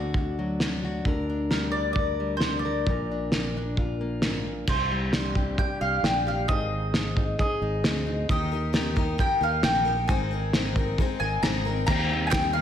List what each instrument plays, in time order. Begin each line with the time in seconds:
Already playing: fingered electric bass D2, steel-string acoustic guitar D3 D4 F#4
0.14 steel-string acoustic guitar D4, kick
0.39 steel-string acoustic guitar F#3
0.60 steel-string acoustic guitar D4, snare
0.85 steel-string acoustic guitar F#4
1.05 fingered electric bass D2, steel-string acoustic guitar D3 A#4, kick
1.30 steel-string acoustic guitar D4
1.51 steel-string acoustic guitar G3, mandolin A#4, snare
1.72 mandolin D5
1.77 steel-string acoustic guitar D4
1.93 mandolin D5, kick
1.99 steel-string acoustic guitar A#4
2.20 steel-string acoustic guitar G3
2.37 mandolin C5, snare
2.44 steel-string acoustic guitar D4
2.59 mandolin D5
2.65 steel-string acoustic guitar A#4
2.87 fingered electric bass A#1, steel-string acoustic guitar A#2 A#4, kick
3.11 steel-string acoustic guitar D4
3.32 steel-string acoustic guitar A#3, snare
3.57 steel-string acoustic guitar D4
3.77 steel-string acoustic guitar F4, kick
4.01 steel-string acoustic guitar A#3
4.22 steel-string acoustic guitar G#2, snare
4.47 steel-string acoustic guitar A#2
4.67 fingered electric bass C2, steel-string acoustic guitar C3, mandolin C5, kick, crash
4.92 steel-string acoustic guitar G3
5.13 steel-string acoustic guitar D4, snare
5.35 steel-string acoustic guitar G4, kick
5.58 steel-string acoustic guitar G4, mandolin G5, kick
5.81 fingered electric bass C2, steel-string acoustic guitar G4, mandolin F5
6.03 fingered electric bass A#1, steel-string acoustic guitar D4, mandolin G5, snare
6.27 steel-string acoustic guitar G4, mandolin F5
6.48 fingered electric bass G#1, steel-string acoustic guitar G#2 D#3 C4 D#4 G#4, mandolin D#5, kick
6.94 steel-string acoustic guitar C4, snare
7.17 steel-string acoustic guitar D#4, kick
7.39 steel-string acoustic guitar G#4, mandolin D#5, kick
7.61 fingered electric bass G#1, steel-string acoustic guitar D#4
7.84 fingered electric bass D2, steel-string acoustic guitar C4, snare
8.07 steel-string acoustic guitar D#4
8.29 fingered electric bass D#2, twelve-string acoustic guitar D#3 D#4 G4 A#4, mandolin D#5, kick
8.51 twelve-string acoustic guitar D#4 G4 A#4
8.73 twelve-string acoustic guitar D#3 D#4 G4 A#4, snare
8.96 twelve-string acoustic guitar D#4 G4 A#4, kick
9.18 twelve-string acoustic guitar D#3 D#4 G4 A#4, mandolin G5, kick
9.41 fingered electric bass D#2, twelve-string acoustic guitar D#4 G4 A#4, mandolin F5
9.63 fingered electric bass A#1, twelve-string acoustic guitar D#3 D#4 G4 A#4, mandolin G5, snare
9.85 twelve-string acoustic guitar D#4 G4 A#4
10.08 fingered electric bass G#1, twelve-string acoustic guitar G#3 C4 D#4 A#4, mandolin G#5, kick
10.31 twelve-string acoustic guitar C4 D#4 A#4
10.53 twelve-string acoustic guitar G#3 C4 D#4 A#4, snare
10.76 twelve-string acoustic guitar C4 D#4 A#4, kick
10.98 twelve-string acoustic guitar G#3 C4 D#4 A#4, kick
11.20 fingered electric bass G#1, twelve-string acoustic guitar C4 D#4 A#4, mandolin G#5
11.43 twelve-string acoustic guitar G#3 C4 D#4 A#4, mandolin A#5, snare
11.65 twelve-string acoustic guitar C4 D#4 A#4
11.87 fingered electric bass D#2, tonewheel organ C3 G3 A#3 D#4, twelve-string acoustic guitar D#3 G3 A#3 C4 G4, mandolin A#5, kick, crash
12.11 twelve-string acoustic guitar A#3 C4 G4
12.27 mandolin G5 G#5
12.32 twelve-string acoustic guitar G3 A#3 C4 G4, kick, snare, clap
12.53 twelve-string acoustic guitar C4 G4, mandolin F5
12.58 twelve-string acoustic guitar A#3